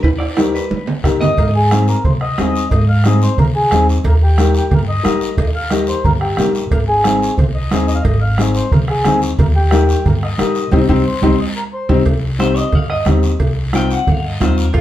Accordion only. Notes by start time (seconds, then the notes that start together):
1.39 A#4
1.56 G#4
1.88 A#4
2.05 C5
2.22 D#5
2.72 D#5
2.89 F5
3.06 D#5
3.23 C5
3.39 A#4
3.56 G#4
4.07 A#4
4.23 G4
4.57 G4
4.74 A#4
4.89 D#5
5.39 D#5
5.55 F5
5.71 D#5
5.89 C5
6.05 A#4
6.21 G4
6.71 A#4
6.88 G#4
7.38 C5
7.55 D#5
7.88 D#5
7.95 F5
8.02 D#5
8.21 F5
8.39 D#5
8.56 C5
8.72 A#4
8.90 G#4
9.39 A#4
9.56 G4
10.07 A#4
10.24 D#5
10.74 D#5
10.91 C5
11.07 C5
11.25 C5
11.41 D#5
11.56 A#4
11.74 C5